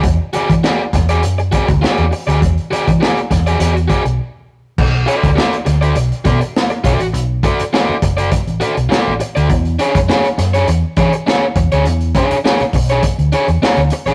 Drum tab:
CC |----------------|----------------|x---------------|----------------|
HH |x-xx--xxxxxx-xox|xxxx-xxxxxxx----|--xx-xxxxxxx-xxx|x-xx--xxxxxx--xx|
SD |----o-o-----o---|----o-o---------|----o-o-----o---|----o-------o---|
BD |o--o--o---oo----|o--o--o---o-----|o--o------o---o-|--o---o-o-------|

CC |----------------|----------------|
HH |xxxx-xxxx-xx--xx|xxxx-xoxxxxx-xxx|
SD |----o-o-----o---|----o-------o---|
BD |o--o------o---o-|--o---o-o-------|